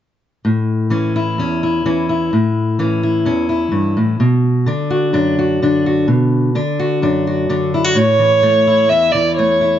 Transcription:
0.45 A2
0.90 E3 C#4
1.16 E4
1.38 E2 C#4
1.63 E4
1.86 E3 C#4
2.09 E4
2.33 A2
2.79 E3 C#4
3.03 E4
3.25 E2 C#4
3.49 E4
3.72 G2
3.97 A2
4.20 B2
4.66 D3 D4
4.91 F#4
5.13 F#2 D4
5.39 F#4
5.62 D3 D4
5.86 F#4
6.08 B2
6.55 D3 D4
6.79 F#4
7.02 F#2 D4
7.27 F#4
7.49 D3 D4
7.74 E4
7.84 F#4
7.95 A2 C#5
8.19 E3
8.43 A3
8.67 E4
8.89 E2 E5
9.12 E3 D5
9.36 A3 C#5
9.61 E4

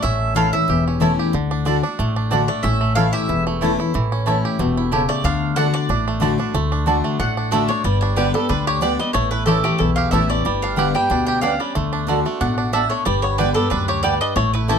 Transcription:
Already playing: A3
0.03 A1 A2 C#4 E5
0.35 E3 A3 C#4 E4 C#5 F5 A5
0.52 C#4 E4 E5
0.68 E1 E2 G4
0.88 C#4
1.00 E3 A3 C#4 E4 C#5 A5
1.19 G4
1.33 D2 D3
1.51 D4
1.65 D3 A3 D4 F#4 D5 A5
1.83 D4 F#4
1.99 A1 A2 A3
2.16 D4
2.31 D3 A3 D4 F#4 D5 A5
2.48 A3 D4 F#4 D5
2.63 A1 A2 C#4 E5
2.81 A3
2.95 E3 A3 C#4 E4 C#5 F5 A5
3.13 G4 E5
3.29 E1 E2 E4
3.47 A3
3.61 E3 A3 C#4 E4 C#5 A5
3.79 C#4 E4
3.94 A1 A2 E3
4.12 C#4
4.26 E3 A3 C#4 E4 C#5 A5
4.45 G4
4.59 E1 B2 A3
4.77 E4
4.91 C#3 A3 E4 G4 C#5 A5
5.09 A3 D5
5.24 D2 D3 D4 F5
5.56 D3 A3 D4 F#4 D5 F#5 A5
5.74 D4 D5
5.89 A1 A2 D4
6.08 A3
6.20 D3 A3 D4 F#4 D5 A5
6.38 D4 F#4
6.54 D2 D3 A3
6.72 D4
6.86 D3 A3 D4 F#4 D5 A5
7.04 A3
7.20 A1 A2 D4 F#5
7.37 D4
7.51 D3 A3 D4 F#4 D5 E5 A5
7.68 D4 F#4 C#5
7.84 G1 G2 G3 D5
8.01 D4 C#5
8.16 D3 G3 B3 G4 B4 D5 G5
8.34 G3 B3 G4 A4
8.49 D2 D3 D4 B4
8.67 G4 C#5
8.81 D3 G3 B3 D4 G4 D5 G5
8.99 G3 B3 G4 D#5
9.13 A1 A2 A3 C#5
9.31 E4 B4
9.46 E3 A3 C#4 E4 G4 A4 C#5 A5
9.63 A3 C#4 E4 G4
9.78 B1 E2 E4 A4
9.96 G4 F5
10.11 A1 E3 A3 C#4 E4 C#5 E5 A5
10.29 A3 C#4 E4 D5
10.45 G1 G2 G3
10.62 D4 F5
10.76 D3 G3 B3 G4 D5 G5
10.94 G3 B3 G4 G5
11.10 D2 B2 D4
11.27 G4 G5
11.41 B3 C#4 D4 G4 D5 F5 G5
11.60 G3 D5
11.75 D2 D3 A3
11.93 D4
12.07 D3 A3 D4 F#4 D5 A5
12.25 A3 D4 F#4
12.41 A1 B2 D4 F#5
12.58 D4
12.73 A2 A3 D4 F#4 D5 E5 A5
12.90 A3 C#5
13.05 G1 G2 G3 D5
13.22 B3 C#5
13.38 D3 G3 B3 D4 G4 B4 D5 G5
13.54 G3 B3 G4 A4
13.70 D2 F#2 D4 B4
13.88 G4 C#5
14.03 G2 G3 B3 G4 D5 G5
14.21 D4 D#5
14.36 A1 A2 A3 C#5
14.54 E4 B4
14.68 E3 A3 C#4 E4 G4 A4 C#5 A5

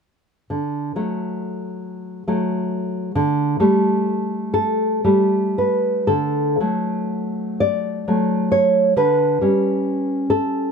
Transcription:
0.50 D3
0.96 F#3 A3
2.28 F#3 A3
3.15 D3
3.60 G3 A3
4.54 A4
5.04 G3 A3
5.58 B4
6.07 D3 A4
6.60 F#3 A3
7.60 D5
8.08 F#3 A3
8.52 C#5
8.96 D3 B4
9.41 G3 C#4
10.30 A4

